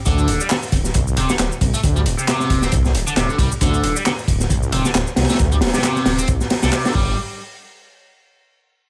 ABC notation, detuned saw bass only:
X:1
M:4/4
L:1/16
Q:"Swing 16ths" 1/4=135
K:Dphr
V:1 name="Detuned saw bass" clef=bass
D,,2 D,,, z3 D,,, z C,,2 D,,, D,,, D,,, z C,, z | D,,2 D,,, z3 D,,, z C,,2 D,,, D,,, D,,, z C,, z | D,,2 D,,, z3 D,,, z C,,2 D,,, D,,, D,,, z C,, z | D,,2 D,,, z3 D,,, z C,, z2 C,, z2 G,,,2 |
z16 |]